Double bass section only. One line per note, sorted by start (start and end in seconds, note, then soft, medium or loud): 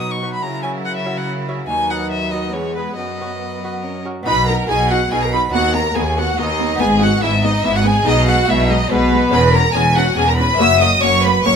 4.26 4.64 B1 medium
4.69 5.06 B1 medium
5.12 5.49 B1 medium
5.54 5.91 D#2 medium
5.96 6.33 D#2 medium
6.38 6.76 D#2 medium
6.80 7.18 G#1 medium
7.22 7.60 G#1 medium
7.64 8.02 G#1 medium
8.07 8.44 B1 medium
8.49 8.86 B1 medium
8.91 9.29 B1 medium
9.33 9.71 E1 medium
9.76 10.13 E1 medium
10.18 10.55 E1 medium
10.60 10.97 F#1 medium
11.03 11.40 F#1 medium
11.45 11.56 F#1 medium